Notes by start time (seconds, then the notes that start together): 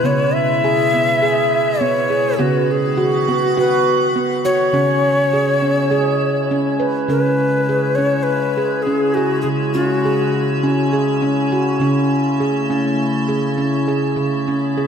Already playing: B2 G#3 E4
0.03 C#3 B3 C#5
0.34 E5
0.64 G#4
0.94 B3
1.22 G#4
1.80 B3 C#5
2.10 G#4
2.39 C#3 D#3 B3 F#4
2.71 G#4
2.97 F#4
3.28 B3 F#4
3.57 F#4 B4
4.16 B3
4.45 F#4 C#5
4.73 C#3 C#4 E4
4.77 G#3
5.33 G#4
5.62 C#4
5.91 G#4
6.51 C#4
6.80 B4
7.08 C#3 G#3 C#4 E4 B4
7.69 G#4
7.95 C#4 C#5
8.23 B4
8.57 G#4
8.82 G#4
8.87 C#4
9.14 F#4 G#4
9.42 C#3 G#4
9.74 C#4 F#4
10.05 G#4
10.63 C#4
10.93 G#4
11.22 C#4
11.52 F#4
11.80 C#3 A3 C#4
12.40 G#4
12.70 C#4
13.28 G#4
13.58 C#4
13.88 G#4
14.16 C#3 B3
14.48 C#4
14.78 G#4